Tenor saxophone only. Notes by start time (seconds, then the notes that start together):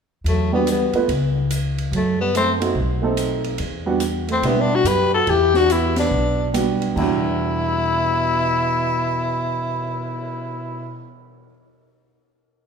0.28 A3
0.54 B3
0.71 B3
1.96 A3
2.21 B3
2.37 C4
4.32 C4
4.48 B3
4.61 D4
4.75 F#4
4.88 B4
5.14 A4
5.30 G4
5.56 F#4
5.72 E4
5.99 D4
6.98 E4